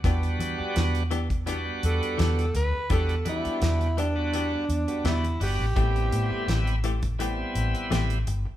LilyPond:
<<
  \new Staff \with { instrumentName = "Tenor saxophone" } { \time 4/4 \key e \minor \tempo 4 = 84 r2 r8 a'4 b'8 | a'8 e'4 d'4. e'8 g'8~ | g'4. r2 r8 | }
  \new Staff \with { instrumentName = "Clean electric guitar" } { \time 4/4 \key e \minor <e b d' g'>16 r8 <b d' g'>16 r8 <e b d' g'>16 r16 <e b d' g'>16 r8. <e b d' g'>16 r8. | <e b d' g'>16 r8 <b d' g'>16 r8 <e b d' g'>16 r16 <e b d' g'>16 r8. <e b d' g'>16 r8. | <e a c' g'>16 r8 <a c' g'>16 r8 <e a c' g'>16 r16 <e a c' g'>16 r8. <e a c' g'>16 r8. | }
  \new Staff \with { instrumentName = "Tonewheel organ" } { \time 4/4 \key e \minor <g b d' fis'>4. r8 <g b d' fis'>4. r8 | <g b d' fis'>16 r16 <g b d' fis'>8. r8 <g b d' fis'>8. r16 <g b d' fis'>8 r16 <g b d' fis'>16 r16 | <g b c' e'>4. r8 <g b c' e'>4. r8 | }
  \new Staff \with { instrumentName = "Fingered electric bass" } { \clef bass \time 4/4 \key e \minor e,8 e16 r16 e,4. e,16 r16 e,8 d,16 r16 | e,8 e16 r16 e,4. e,16 r16 e,8 g,,16 a,,16 | a,,8 a,16 r16 a,,4. a,,16 r16 a,,8 g,,16 r16 | }
  \new DrumStaff \with { instrumentName = "Drums" } \drummode { \time 4/4 <hh bd>16 hh16 hh8 <hh sn>16 hh16 hh16 <hh bd>16 hh8 hh16 hh16 <hh sn>16 hh16 hh8 | <hh bd>16 hh16 hh16 hh16 <hh sn>16 hh16 hh8 hh8 hh16 hh16 <hh sn>16 hh16 hho8 | <hh bd>16 hh16 hh8 <hh sn>16 hh16 hh16 <hh bd>16 hh8 hh16 hh16 <hh sn>16 hh16 hh8 | }
>>